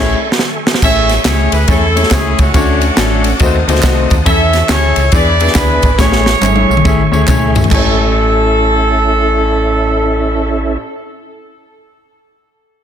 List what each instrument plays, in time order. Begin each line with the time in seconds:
Already playing: fm bass A1, grand piano A3 C#4 E4 G#4 C#5, horn section C#4 E4 A4, tonewheel organ A4 E5 G#5 C#6
0.32 snare
0.39 snare
0.67 snare
0.74 snare
0.82 fm bass A1, grand piano A2 A3 C#4 E4 G#4 C#5, tonewheel organ A3 E5 G#5 C#6, horn section G#4 C#5 E5, kick, crash, tambourine
1.09 snare, ride, tambourine
1.25 fm bass C#2, grand piano A3 C#4 E4 G#4 E5, horn section C#5, snare, clap, ride, tambourine
1.52 fm bass D2, horn section B4, ride, tambourine
1.68 fm bass E2, grand piano A3 C#4 E4 G#4 C#5, horn section C#4 E4 A4, kick, ride, tambourine
1.95 grand piano A3 C#4 E4 G#4 C#5, ride, tambourine
2.03 snare
2.11 fm bass C#2, grand piano A3 C#4 E4 G#4 C#5, horn section G#4, kick, snare, clap, ride, tambourine
2.38 fm bass C#2, horn section A3 C#4 F#4, kick, ride, tambourine
2.54 fm bass D2, grand piano D3 A3 C#4 D4 F#4 C#5, tonewheel organ C#4 F#5 A5 D6, kick, ride, tambourine
2.81 ride, tambourine
2.96 fm bass A1, grand piano A3 C#4 D4 F#4 A4, snare, clap, ride, tambourine
3.24 ride, tambourine
3.39 fm bass D#2, grand piano D#3 A3 C4 D#4 F#4 C5, tonewheel organ C5 D#6, kick, ride, tambourine
3.68 fm bass D2, grand piano A3 C4 D#4 F#4 C5, ride, tambourine
3.75 snare
3.83 fm bass C2, grand piano A3 C4 D#4 F#4 C5, kick, snare, clap, ride, tambourine
4.10 fm bass D#2, kick, ride, tambourine
4.26 fm bass E2, grand piano E3 C#4 E4 A4, horn section A4 C#5 E5, tonewheel organ C#5 E5 E6, kick, ride, tambourine
4.53 snare, ride, tambourine
4.68 fm bass D2, grand piano C#4 E4 G#4, horn section E4 A4 C#5, snare, clap, ride, tambourine
4.96 fm bass C#2, ride, tambourine
5.12 fm bass E2, grand piano E3 B3 D4 E4 G#4 D5, horn section G#4 B4 D5, tonewheel organ B4 G#5 D6, kick, ride, tambourine
5.40 grand piano B3 D4 E4 G#4 B4, ride, tambourine
5.47 snare
5.55 fm bass D2, grand piano B3 D4 E4 G#4 D5, horn section D4 G#4 B4, kick, snare, clap, ride, tambourine
5.82 fm bass G#1, kick, ride, tambourine
5.98 fm bass A1, grand piano A2 A3 C#4 E4 G#4 C#5, tonewheel organ A3 E5 C#6, horn section E4 G#4 C#5, kick, snare, tambourine
6.12 snare
6.26 snare, tambourine
6.41 fm bass G#1, grand piano A3 C#4 E4 G#4 C#5, clap, high tom, tambourine
6.56 high tom
6.70 fm bass B1, tambourine
6.77 mid tom
6.84 fm bass A1, grand piano A3 C#4 E4 G#4 E5, kick, tambourine
7.11 fm bass D2, grand piano A3 C#4 E4 G#4 C#5, tambourine
7.27 fm bass C#2, grand piano A3 C#4 E4 G#4 C#5, kick, clap, mid tom, tambourine
7.55 floor tom, tambourine
7.64 grand piano A3, floor tom
7.70 grand piano A1 E4 G#5, fm bass A1, tonewheel organ C#4 E4 A4 E5, horn section A4, kick, clap, crash
7.74 grand piano C#5